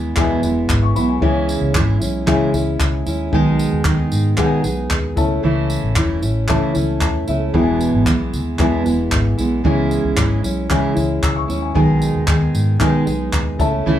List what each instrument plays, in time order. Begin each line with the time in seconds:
Already playing: fingered electric bass D#2, steel-string acoustic guitar E3 G#3 B3 E4, felt piano E4 G#4 B4 G#5
0.16 steel-string acoustic guitar E2 B2 E3 G#3 B3 E4, fingered electric bass E2, felt piano E4 G#4 B4 G#5, kick, clap
0.43 fingered electric bass E1, steel-string acoustic guitar E3 G#3 B3 E4, tambourine
0.69 fingered electric bass G#1, kick, clap
0.83 felt piano C#6
0.96 fingered electric bass B1, steel-string acoustic guitar E3 G#3 B3 E4, felt piano B5, tambourine
1.09 felt piano G#5
1.21 fingered electric bass C#2, steel-string acoustic guitar C#3 E3 G#3 C#4 E4, felt piano E4 G#4 C#5 G#5, kick
1.49 tambourine
1.61 fingered electric bass C#2
1.74 fingered electric bass G#1, steel-string acoustic guitar E3 G#3 C#4 E4, kick, clap
2.00 fingered electric bass B1, steel-string acoustic guitar G#3 C#4 E4, tambourine
2.26 steel-string acoustic guitar C#3 E3 G#3 C#4 E4, felt piano E4 G#4 C#5 G#5, kick, clap
2.53 fingered electric bass C#2, steel-string acoustic guitar G#3 C#4 E4, tambourine
2.80 fingered electric bass C#2, kick, clap
3.06 fingered electric bass D#2, steel-string acoustic guitar G#3 C#4 E4, tambourine
3.32 fingered electric bass B1, steel-string acoustic guitar B2 D#3 G#3 D#4 G#4, felt piano D#4 G#4 B4 G#5, kick
3.59 tambourine
3.73 fingered electric bass D#2
3.84 fingered electric bass D#2, steel-string acoustic guitar D#3 G#3 D#4 G#4, kick, clap
4.12 fingered electric bass G#2, tambourine
4.37 steel-string acoustic guitar B2 D#3 G#3 D#4 G#4, fingered electric bass B2, felt piano D#4 G#4 B4 F#5, kick, clap
4.45 felt piano G#5
4.63 fingered electric bass B1, steel-string acoustic guitar G#3 D#4 G#4, tambourine
4.90 fingered electric bass D#2, kick, clap
5.16 fingered electric bass C#2, steel-string acoustic guitar A3 C#4 E4, felt piano E4 A4 C#5 A5, kick, tambourine
5.43 fingered electric bass C#2, steel-string acoustic guitar C#3 E3 A3 C#4 E4
5.70 tambourine
5.83 fingered electric bass A1
5.96 fingered electric bass E1, steel-string acoustic guitar E3 A3 C#4 E4, kick, clap
6.22 fingered electric bass A1, steel-string acoustic guitar A3 C#4 E4, tambourine
6.48 steel-string acoustic guitar C#3 E3 A3 C#4 E4, felt piano E4 A4 C#5 A5, kick, clap
6.74 fingered electric bass C#2, steel-string acoustic guitar A3 C#4 E4, tambourine
7.01 fingered electric bass D#2, felt piano A5, kick, clap
7.27 fingered electric bass C#2, steel-string acoustic guitar A3 C#4 E4, felt piano E5, tambourine
7.53 fingered electric bass E1, steel-string acoustic guitar E2 B2 E3 G#3 B3 E4, felt piano E4 G#4 B4 G5, kick
7.62 felt piano G#5
7.81 tambourine
7.94 fingered electric bass G#1
8.06 fingered electric bass B1, steel-string acoustic guitar E3 G#3 B3 E4, kick, clap
8.33 fingered electric bass D#2, tambourine
8.59 steel-string acoustic guitar E2 B2 E3 G#3 B3 E4, fingered electric bass E2, felt piano E4 G#4 B4 G#5, kick, clap
8.85 fingered electric bass E1, steel-string acoustic guitar E3 G#3 B3 E4, tambourine
9.12 fingered electric bass G#1, kick, clap
9.38 fingered electric bass B1, steel-string acoustic guitar E3 G#3 B3 E4, tambourine
9.64 fingered electric bass C#2, steel-string acoustic guitar C#3 E3 G#3 C#4 E4, felt piano E4 G#4 C#5 G#5, kick
9.91 tambourine
10.05 fingered electric bass C#2
10.17 fingered electric bass G#1, steel-string acoustic guitar E3 G#3 C#4 E4, kick, clap
10.43 fingered electric bass B1, steel-string acoustic guitar G#3 C#4 E4, tambourine
10.69 steel-string acoustic guitar C#3 E3 G#3 C#4 E4, felt piano E4 G#4 C#5 G#5, kick, clap
10.95 fingered electric bass C#2, steel-string acoustic guitar G#3 C#4 E4, tambourine
11.23 fingered electric bass C#2, felt piano E6, kick, clap
11.36 felt piano C#6
11.48 fingered electric bass D#2, steel-string acoustic guitar G#3 C#4 E4, tambourine
11.62 felt piano G#5
11.74 fingered electric bass B1, steel-string acoustic guitar B2 D#3 G#3 D#4 G#4, felt piano D#4 G#4 B4 G#5, kick
12.02 tambourine
12.15 fingered electric bass D#2
12.27 fingered electric bass D#2, steel-string acoustic guitar D#3 G#3 D#4 G#4, kick, clap
12.55 fingered electric bass G#2, tambourine
12.80 steel-string acoustic guitar B2 D#3 G#3 D#4 G#4, fingered electric bass B2, felt piano D#4 G#4 B4 G#5, kick, clap
13.06 fingered electric bass B1, steel-string acoustic guitar G#3 D#4 G#4, tambourine
13.33 fingered electric bass D#2, kick, clap
13.59 fingered electric bass C#2, steel-string acoustic guitar A3 C#4 E4, felt piano E4 A4 C#5 A5, kick, tambourine
13.86 fingered electric bass C#2, steel-string acoustic guitar C#3 E3 A3 C#4 E4